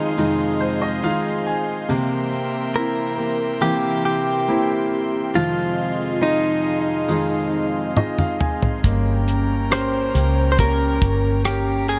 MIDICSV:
0, 0, Header, 1, 7, 480
1, 0, Start_track
1, 0, Key_signature, -4, "minor"
1, 0, Tempo, 858369
1, 1059, Time_signature, 4, 2, 24, 8
1, 2022, Tempo, 870827
1, 6639, End_track
2, 0, Start_track
2, 0, Title_t, "Analog synth pad"
2, 0, Program_c, 0, 89
2, 0, Note_on_c, 0, 68, 79
2, 0, Note_on_c, 0, 75, 66
2, 0, Note_on_c, 0, 77, 72
2, 0, Note_on_c, 0, 84, 82
2, 1039, Note_off_c, 0, 68, 0
2, 1039, Note_off_c, 0, 75, 0
2, 1039, Note_off_c, 0, 84, 0
2, 1040, Note_off_c, 0, 77, 0
2, 1052, Note_on_c, 0, 76, 65
2, 1053, Note_on_c, 0, 70, 69
2, 1056, Note_on_c, 0, 79, 65
2, 1056, Note_on_c, 0, 84, 79
2, 2955, Note_off_c, 0, 76, 0
2, 2956, Note_off_c, 0, 70, 0
2, 2957, Note_off_c, 0, 79, 0
2, 2978, Note_on_c, 0, 75, 62
2, 2979, Note_on_c, 0, 68, 69
2, 2979, Note_on_c, 0, 77, 69
2, 4880, Note_off_c, 0, 84, 0
2, 4884, Note_off_c, 0, 68, 0
2, 4884, Note_off_c, 0, 75, 0
2, 4884, Note_off_c, 0, 77, 0
2, 4903, Note_on_c, 0, 82, 75
2, 4904, Note_on_c, 0, 70, 70
2, 4905, Note_on_c, 0, 61, 65
2, 4905, Note_on_c, 0, 79, 65
2, 6639, Note_off_c, 0, 61, 0
2, 6639, Note_off_c, 0, 70, 0
2, 6639, Note_off_c, 0, 79, 0
2, 6639, Note_off_c, 0, 82, 0
2, 6639, End_track
3, 0, Start_track
3, 0, Title_t, "Clean electric guitar"
3, 0, Program_c, 1, 27
3, 0, Note_on_c, 1, 63, 61
3, 556, Note_off_c, 1, 63, 0
3, 1541, Note_on_c, 1, 70, 81
3, 2000, Note_off_c, 1, 70, 0
3, 2023, Note_on_c, 1, 67, 82
3, 2256, Note_off_c, 1, 67, 0
3, 2263, Note_on_c, 1, 67, 77
3, 2980, Note_on_c, 1, 65, 69
3, 3000, Note_off_c, 1, 67, 0
3, 3459, Note_off_c, 1, 65, 0
3, 3461, Note_on_c, 1, 63, 57
3, 4400, Note_off_c, 1, 63, 0
3, 5391, Note_on_c, 1, 72, 74
3, 5820, Note_off_c, 1, 72, 0
3, 5827, Note_on_c, 1, 72, 59
3, 5866, Note_off_c, 1, 72, 0
3, 5872, Note_on_c, 1, 70, 81
3, 6340, Note_off_c, 1, 70, 0
3, 6342, Note_on_c, 1, 67, 68
3, 6581, Note_off_c, 1, 67, 0
3, 6583, Note_on_c, 1, 68, 73
3, 6639, Note_off_c, 1, 68, 0
3, 6639, End_track
4, 0, Start_track
4, 0, Title_t, "Grand piano"
4, 0, Program_c, 2, 0
4, 0, Control_c, 2, 64, 127
4, 0, Note_on_c, 2, 53, 56
4, 0, Note_on_c, 2, 63, 42
4, 0, Note_on_c, 2, 65, 40
4, 0, Note_on_c, 2, 68, 45
4, 85, Note_off_c, 2, 63, 0
4, 86, Note_off_c, 2, 65, 0
4, 87, Note_off_c, 2, 68, 0
4, 97, Note_on_c, 2, 63, 41
4, 99, Note_on_c, 2, 65, 39
4, 102, Note_on_c, 2, 68, 45
4, 338, Note_on_c, 2, 72, 53
4, 450, Note_off_c, 2, 72, 0
4, 456, Note_on_c, 2, 75, 55
4, 563, Note_off_c, 2, 63, 0
4, 564, Note_off_c, 2, 65, 0
4, 566, Note_off_c, 2, 68, 0
4, 569, Note_off_c, 2, 75, 0
4, 577, Note_on_c, 2, 63, 44
4, 579, Note_on_c, 2, 65, 42
4, 579, Note_on_c, 2, 77, 63
4, 581, Note_on_c, 2, 68, 45
4, 802, Note_off_c, 2, 77, 0
4, 819, Note_on_c, 2, 80, 51
4, 1038, Note_off_c, 2, 53, 0
4, 1042, Note_off_c, 2, 80, 0
4, 1044, Note_off_c, 2, 63, 0
4, 1045, Note_off_c, 2, 65, 0
4, 1046, Note_off_c, 2, 68, 0
4, 1056, Note_on_c, 2, 48, 55
4, 1065, Control_c, 2, 64, 0
4, 1177, Control_c, 2, 64, 127
4, 1537, Note_on_c, 2, 58, 42
4, 1540, Note_on_c, 2, 60, 40
4, 1541, Note_on_c, 2, 64, 47
4, 2006, Note_off_c, 2, 58, 0
4, 2007, Note_off_c, 2, 60, 0
4, 2008, Note_off_c, 2, 64, 0
4, 2018, Note_on_c, 2, 58, 46
4, 2020, Note_on_c, 2, 60, 41
4, 2023, Note_on_c, 2, 64, 44
4, 2484, Note_off_c, 2, 58, 0
4, 2485, Note_off_c, 2, 60, 0
4, 2487, Note_off_c, 2, 64, 0
4, 2498, Note_on_c, 2, 58, 42
4, 2499, Note_on_c, 2, 60, 40
4, 2503, Note_on_c, 2, 64, 52
4, 2954, Note_off_c, 2, 48, 0
4, 2963, Note_off_c, 2, 58, 0
4, 2963, Note_off_c, 2, 60, 0
4, 2965, Note_off_c, 2, 64, 0
4, 2980, Note_on_c, 2, 53, 54
4, 2986, Control_c, 2, 64, 0
4, 3077, Control_c, 2, 64, 127
4, 3456, Note_on_c, 2, 63, 42
4, 3457, Note_on_c, 2, 65, 37
4, 3459, Note_on_c, 2, 68, 42
4, 3921, Note_off_c, 2, 63, 0
4, 3922, Note_off_c, 2, 65, 0
4, 3923, Note_off_c, 2, 68, 0
4, 3933, Note_on_c, 2, 63, 44
4, 3937, Note_on_c, 2, 65, 37
4, 3938, Note_on_c, 2, 68, 43
4, 4404, Note_off_c, 2, 63, 0
4, 4406, Note_off_c, 2, 65, 0
4, 4406, Note_off_c, 2, 68, 0
4, 4419, Note_on_c, 2, 63, 41
4, 4421, Note_on_c, 2, 65, 38
4, 4422, Note_on_c, 2, 75, 58
4, 4424, Note_on_c, 2, 68, 48
4, 4534, Note_off_c, 2, 75, 0
4, 4542, Note_on_c, 2, 77, 52
4, 4654, Note_off_c, 2, 77, 0
4, 4661, Note_on_c, 2, 80, 46
4, 4882, Note_off_c, 2, 53, 0
4, 4885, Note_off_c, 2, 80, 0
4, 4888, Note_off_c, 2, 63, 0
4, 4889, Note_off_c, 2, 65, 0
4, 4891, Note_off_c, 2, 68, 0
4, 4902, Note_on_c, 2, 58, 55
4, 4911, Control_c, 2, 64, 0
4, 4999, Control_c, 2, 64, 127
4, 5378, Note_on_c, 2, 61, 39
4, 5381, Note_on_c, 2, 67, 40
4, 5381, Note_on_c, 2, 70, 46
4, 5848, Note_off_c, 2, 61, 0
4, 5849, Note_off_c, 2, 70, 0
4, 5850, Note_off_c, 2, 67, 0
4, 5866, Note_on_c, 2, 61, 42
4, 5868, Note_on_c, 2, 67, 37
4, 5868, Note_on_c, 2, 70, 44
4, 6329, Note_off_c, 2, 61, 0
4, 6330, Note_off_c, 2, 67, 0
4, 6331, Note_off_c, 2, 70, 0
4, 6341, Note_on_c, 2, 61, 44
4, 6343, Note_on_c, 2, 79, 38
4, 6344, Note_on_c, 2, 70, 45
4, 6639, Note_off_c, 2, 58, 0
4, 6639, Note_off_c, 2, 61, 0
4, 6639, Note_off_c, 2, 70, 0
4, 6639, Note_off_c, 2, 79, 0
4, 6639, End_track
5, 0, Start_track
5, 0, Title_t, "Steel-string acoustic guitar"
5, 0, Program_c, 3, 25
5, 0, Note_on_c, 3, 51, 36
5, 0, Note_on_c, 3, 56, 38
5, 0, Note_on_c, 3, 60, 39
5, 0, Note_on_c, 3, 65, 36
5, 93, Note_off_c, 3, 51, 0
5, 95, Note_off_c, 3, 56, 0
5, 96, Note_off_c, 3, 60, 0
5, 97, Note_on_c, 3, 41, 66
5, 98, Note_on_c, 3, 48, 70
5, 99, Note_off_c, 3, 65, 0
5, 100, Note_on_c, 3, 51, 68
5, 102, Note_on_c, 3, 56, 70
5, 103, Note_on_c, 3, 60, 66
5, 105, Note_on_c, 3, 65, 65
5, 569, Note_off_c, 3, 51, 0
5, 573, Note_off_c, 3, 56, 0
5, 576, Note_on_c, 3, 51, 44
5, 577, Note_off_c, 3, 41, 0
5, 578, Note_off_c, 3, 48, 0
5, 580, Note_off_c, 3, 65, 0
5, 580, Note_on_c, 3, 56, 50
5, 581, Note_off_c, 3, 60, 0
5, 584, Note_on_c, 3, 60, 45
5, 587, Note_on_c, 3, 65, 55
5, 1056, Note_off_c, 3, 51, 0
5, 1056, Note_on_c, 3, 48, 73
5, 1058, Note_off_c, 3, 56, 0
5, 1058, Note_on_c, 3, 52, 68
5, 1060, Note_off_c, 3, 60, 0
5, 1060, Note_off_c, 3, 65, 0
5, 1060, Note_on_c, 3, 58, 80
5, 1062, Note_on_c, 3, 60, 72
5, 1062, Note_on_c, 3, 67, 75
5, 1769, Note_off_c, 3, 67, 0
5, 1775, Note_on_c, 3, 67, 41
5, 1778, Note_off_c, 3, 48, 0
5, 1778, Note_off_c, 3, 60, 0
5, 1779, Note_off_c, 3, 52, 0
5, 1779, Note_off_c, 3, 58, 0
5, 1780, Note_on_c, 3, 60, 37
5, 1785, Note_on_c, 3, 58, 33
5, 2014, Note_off_c, 3, 58, 0
5, 2016, Note_off_c, 3, 60, 0
5, 2016, Note_on_c, 3, 48, 66
5, 2017, Note_off_c, 3, 67, 0
5, 2018, Note_on_c, 3, 52, 70
5, 2021, Note_on_c, 3, 58, 68
5, 2023, Note_on_c, 3, 60, 71
5, 2023, Note_on_c, 3, 67, 69
5, 2488, Note_off_c, 3, 52, 0
5, 2492, Note_off_c, 3, 58, 0
5, 2494, Note_on_c, 3, 52, 38
5, 2497, Note_off_c, 3, 48, 0
5, 2498, Note_off_c, 3, 67, 0
5, 2498, Note_on_c, 3, 58, 45
5, 2501, Note_off_c, 3, 60, 0
5, 2503, Note_on_c, 3, 60, 44
5, 2505, Note_on_c, 3, 67, 49
5, 2971, Note_on_c, 3, 41, 57
5, 2975, Note_off_c, 3, 52, 0
5, 2975, Note_on_c, 3, 48, 62
5, 2977, Note_off_c, 3, 58, 0
5, 2979, Note_on_c, 3, 51, 62
5, 2980, Note_off_c, 3, 67, 0
5, 2981, Note_on_c, 3, 56, 63
5, 2982, Note_off_c, 3, 60, 0
5, 2984, Note_on_c, 3, 60, 60
5, 2987, Note_on_c, 3, 65, 68
5, 3925, Note_off_c, 3, 41, 0
5, 3927, Note_off_c, 3, 48, 0
5, 3928, Note_off_c, 3, 51, 0
5, 3930, Note_off_c, 3, 56, 0
5, 3931, Note_off_c, 3, 60, 0
5, 3931, Note_on_c, 3, 41, 60
5, 3933, Note_off_c, 3, 65, 0
5, 3934, Note_on_c, 3, 48, 64
5, 3935, Note_on_c, 3, 51, 67
5, 3937, Note_on_c, 3, 56, 62
5, 3937, Note_on_c, 3, 60, 65
5, 3940, Note_on_c, 3, 65, 71
5, 4410, Note_off_c, 3, 51, 0
5, 4414, Note_off_c, 3, 56, 0
5, 4416, Note_on_c, 3, 51, 45
5, 4418, Note_off_c, 3, 41, 0
5, 4418, Note_off_c, 3, 60, 0
5, 4419, Note_off_c, 3, 48, 0
5, 4420, Note_on_c, 3, 56, 38
5, 4422, Note_off_c, 3, 65, 0
5, 4425, Note_on_c, 3, 60, 50
5, 4427, Note_on_c, 3, 65, 47
5, 4896, Note_off_c, 3, 51, 0
5, 4898, Note_on_c, 3, 55, 60
5, 4900, Note_off_c, 3, 56, 0
5, 4902, Note_off_c, 3, 60, 0
5, 4902, Note_on_c, 3, 58, 67
5, 4904, Note_off_c, 3, 65, 0
5, 4904, Note_on_c, 3, 61, 60
5, 4906, Note_on_c, 3, 67, 63
5, 5614, Note_off_c, 3, 67, 0
5, 5619, Note_off_c, 3, 61, 0
5, 5620, Note_on_c, 3, 67, 36
5, 5623, Note_off_c, 3, 55, 0
5, 5625, Note_off_c, 3, 58, 0
5, 5626, Note_on_c, 3, 61, 33
5, 5631, Note_on_c, 3, 58, 37
5, 5859, Note_off_c, 3, 58, 0
5, 5863, Note_off_c, 3, 67, 0
5, 5865, Note_off_c, 3, 61, 0
5, 5866, Note_on_c, 3, 58, 64
5, 5871, Note_on_c, 3, 61, 67
5, 6639, Note_off_c, 3, 58, 0
5, 6639, Note_off_c, 3, 61, 0
5, 6639, End_track
6, 0, Start_track
6, 0, Title_t, "Fingered electric bass"
6, 0, Program_c, 4, 33
6, 4903, Note_on_c, 4, 31, 76
6, 5603, Note_off_c, 4, 31, 0
6, 5624, Note_on_c, 4, 37, 72
6, 6082, Note_off_c, 4, 37, 0
6, 6103, Note_on_c, 4, 31, 83
6, 6639, Note_off_c, 4, 31, 0
6, 6639, End_track
7, 0, Start_track
7, 0, Title_t, "Drums"
7, 4420, Note_on_c, 9, 48, 45
7, 4475, Note_off_c, 9, 48, 0
7, 4541, Note_on_c, 9, 47, 48
7, 4596, Note_off_c, 9, 47, 0
7, 4662, Note_on_c, 9, 45, 62
7, 4717, Note_off_c, 9, 45, 0
7, 4783, Note_on_c, 9, 43, 70
7, 4838, Note_off_c, 9, 43, 0
7, 4902, Note_on_c, 9, 36, 80
7, 4904, Note_on_c, 9, 42, 72
7, 4957, Note_off_c, 9, 36, 0
7, 4959, Note_off_c, 9, 42, 0
7, 5144, Note_on_c, 9, 42, 61
7, 5199, Note_off_c, 9, 42, 0
7, 5384, Note_on_c, 9, 42, 72
7, 5386, Note_on_c, 9, 37, 82
7, 5439, Note_off_c, 9, 42, 0
7, 5441, Note_off_c, 9, 37, 0
7, 5625, Note_on_c, 9, 42, 60
7, 5680, Note_off_c, 9, 42, 0
7, 5864, Note_on_c, 9, 42, 66
7, 5866, Note_on_c, 9, 36, 68
7, 5919, Note_off_c, 9, 42, 0
7, 5921, Note_off_c, 9, 36, 0
7, 6102, Note_on_c, 9, 36, 78
7, 6104, Note_on_c, 9, 42, 64
7, 6157, Note_off_c, 9, 36, 0
7, 6159, Note_off_c, 9, 42, 0
7, 6340, Note_on_c, 9, 42, 67
7, 6343, Note_on_c, 9, 37, 93
7, 6395, Note_off_c, 9, 42, 0
7, 6398, Note_off_c, 9, 37, 0
7, 6579, Note_on_c, 9, 42, 55
7, 6635, Note_off_c, 9, 42, 0
7, 6639, End_track
0, 0, End_of_file